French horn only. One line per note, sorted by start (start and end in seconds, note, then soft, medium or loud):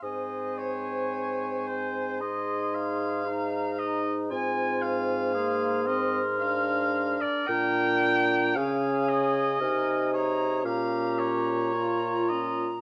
0.03 2.23 C4 medium
2.22 3.26 D#4 medium
3.27 4.32 D#4 medium
4.31 5.37 C4 medium
5.36 5.89 A#3 medium
5.87 6.21 C4 medium
6.39 7.44 D4 medium
7.49 8.58 D4 medium
8.56 9.61 C#4 medium
9.62 10.66 D#4 medium
10.64 11.73 C#4 medium
11.74 12.33 F4 medium
12.31 12.68 C#4 medium